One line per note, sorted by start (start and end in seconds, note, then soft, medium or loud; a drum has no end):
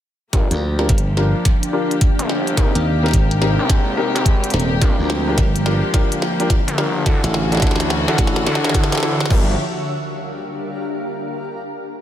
0.33 0.48 G1 loud
0.33 2.55 F3 medium
0.33 4.78 A#3 medium
0.33 0.59 D4 medium
0.33 3.49 D4 medium
0.33 0.59 F4 medium
0.33 0.59 G4 medium
0.33 7.02 G4 medium
0.33 0.59 A#4 medium
0.33 kick medium
0.33 snare soft
0.33 closed hi-hat medium
0.51 0.88 D2 medium
0.51 closed hi-hat medium
0.79 0.92 D4 medium
0.79 0.92 F4 medium
0.79 0.92 G4 medium
0.79 2.58 G4 medium
0.79 0.92 A#4 medium
0.79 cross-stick soft
0.79 snare soft
0.87 1.32 G1 medium
0.87 3.49 F5 medium
0.87 kick medium
0.87 closed hi-hat medium
0.98 closed hi-hat medium
1.17 1.43 D4 medium
1.17 1.43 F4 medium
1.17 1.43 G4 medium
1.17 1.43 A#4 medium
1.17 snare soft
1.32 7.06 A#4 medium
1.45 kick medium
1.45 snare medium
1.45 closed hi-hat medium
1.63 closed hi-hat medium
1.73 1.93 D4 medium
1.73 1.93 F4 medium
1.73 1.93 G4 medium
1.73 1.93 A#4 loud
1.91 closed hi-hat soft
2.01 kick loud
2.01 closed hi-hat medium
2.19 2.56 G1 medium
2.19 closed hi-hat medium
2.29 snare medium
2.47 closed hi-hat soft
2.57 2.72 G#1 loud
2.57 4.80 C3 medium
2.57 2.84 C4 medium
2.57 5.57 C4 medium
2.57 2.84 D#4 medium
2.57 2.84 G4 medium
2.57 2.84 A#4 medium
2.57 kick loud
2.57 snare medium
2.57 closed hi-hat medium
2.68 4.82 G#3 medium
2.75 3.12 D#2 medium
2.75 closed hi-hat medium
3.03 3.16 C4 medium
3.03 3.16 D#4 medium
3.03 3.16 G4 medium
3.03 3.16 A#4 medium
3.03 snare soft
3.08 snare soft
3.11 3.57 G#1 loud
3.11 kick medium
3.11 snare soft
3.11 closed hi-hat medium
3.31 closed hi-hat medium
3.41 3.68 C4 medium
3.41 3.68 D#4 medium
3.41 3.68 G4 medium
3.41 3.68 A#4 medium
3.41 snare medium
3.59 4.13 G#1 loud
3.59 5.73 G5 medium
3.70 kick medium
3.70 snare medium
3.70 closed hi-hat medium
3.97 4.17 C4 medium
3.97 4.17 D#4 medium
3.97 4.17 G4 medium
3.97 4.17 A#4 loud
4.15 4.52 G#1 loud
4.15 snare medium
4.15 closed hi-hat soft
4.26 kick loud
4.26 closed hi-hat medium
4.44 closed hi-hat medium
4.50 4.80 D#1 loud
4.50 snare medium
4.50 closed hi-hat soft
4.60 closed hi-hat soft
4.81 4.97 G1 loud
4.81 9.31 D3 medium
4.81 7.04 F3 medium
4.81 7.04 A#3 medium
4.81 5.08 D4 medium
4.81 5.08 F4 medium
4.81 5.08 G4 medium
4.81 5.08 A#4 medium
4.81 kick loud
4.81 snare medium
4.81 closed hi-hat medium
4.99 5.36 D2 medium
5.10 snare medium
5.27 5.40 D4 medium
5.27 5.40 F4 medium
5.27 5.40 G4 medium
5.27 7.06 G4 medium
5.27 5.40 A#4 medium
5.38 5.81 G1 loud
5.38 kick loud
5.38 snare medium
5.38 closed hi-hat medium
5.56 closed hi-hat medium
5.66 5.92 D4 medium
5.66 5.92 F4 medium
5.66 5.92 G4 medium
5.66 5.92 A#4 medium
5.66 snare medium
5.86 7.06 F5 medium
5.94 6.20 D4 medium
5.94 6.20 F4 medium
5.94 6.20 G4 medium
5.94 6.20 A#4 loud
5.94 kick medium
5.94 snare medium
5.94 closed hi-hat medium
6.12 closed hi-hat medium
6.22 snare medium
6.40 6.53 D4 medium
6.40 6.53 F4 medium
6.40 6.53 G4 medium
6.40 6.53 A#4 medium
6.40 closed hi-hat soft
6.50 kick loud
6.50 snare medium
6.50 closed hi-hat medium
6.68 7.04 G1 loud
6.68 closed hi-hat medium
6.78 7.04 D4 medium
6.78 7.04 F4 medium
6.78 7.04 G4 medium
6.78 7.04 A#4 medium
6.78 snare medium
7.06 7.21 D2 loud
7.06 9.28 E3 medium
7.06 9.28 C#4 medium
7.06 7.32 D4 medium
7.06 7.32 E4 medium
7.06 9.28 F#4 medium
7.06 7.32 F#4 medium
7.06 7.32 A4 loud
7.06 kick loud
7.06 snare loud
7.06 closed hi-hat medium
7.24 7.60 A1 loud
7.24 snare medium
7.24 closed hi-hat soft
7.33 9.30 E5 medium
7.33 snare medium
7.51 7.60 D4 medium
7.51 7.60 E4 medium
7.51 9.31 F#4 medium
7.51 7.60 F#4 medium
7.51 7.61 A4 medium
7.51 snare soft
7.51 closed hi-hat soft
7.55 snare soft
7.57 9.31 C#5 medium
7.57 snare soft
7.60 7.88 D4 medium
7.60 7.88 E4 medium
7.60 7.88 F#4 medium
7.60 7.88 A4 loud
7.60 kick loud
7.60 snare medium
7.62 snare medium
7.62 closed hi-hat medium
7.67 snare medium
7.71 snare medium
7.76 snare medium
7.80 snare medium
7.80 closed hi-hat soft
7.90 snare medium
8.08 8.17 A1 loud
8.08 8.17 D4 medium
8.08 8.17 E4 medium
8.08 8.17 F#4 medium
8.08 8.17 A4 medium
8.08 snare medium
8.18 8.45 A1 loud
8.18 8.45 D4 medium
8.18 8.45 E4 medium
8.18 8.45 F#4 medium
8.18 8.45 A4 loud
8.18 kick medium
8.18 snare loud
8.18 closed hi-hat medium
8.27 snare medium
8.36 snare loud
8.46 8.61 D2 loud
8.46 8.73 D4 medium
8.46 8.73 E4 medium
8.46 8.73 F#4 medium
8.46 8.73 A4 loud
8.46 snare loud
8.55 snare medium
8.64 9.17 F#1 loud
8.64 snare loud
8.64 closed hi-hat soft
8.69 snare medium
8.74 9.01 D4 medium
8.74 9.01 E4 medium
8.74 9.01 F#4 medium
8.74 9.01 A4 loud
8.74 kick loud
8.74 snare loud
8.74 closed hi-hat medium
8.84 snare medium
8.92 snare medium
8.92 closed hi-hat medium
8.95 snare medium
8.97 snare medium
9.00 9.29 D4 medium
9.00 9.29 E4 medium
9.00 9.29 F#4 medium
9.00 9.29 A4 loud
9.00 snare soft
9.03 snare loud
9.21 snare loud
9.26 snare loud
9.30 9.57 G1 loud
9.30 9.56 F3 medium
9.30 9.56 A#3 medium
9.30 9.53 D4 medium
9.30 11.51 D4 medium
9.30 9.53 F4 medium
9.30 9.53 G4 medium
9.30 9.57 G4 medium
9.30 9.53 A#4 loud
9.30 kick loud
9.30 crash medium
9.41 11.51 G4 medium
9.51 11.51 A#4 medium
9.57 11.51 F5 medium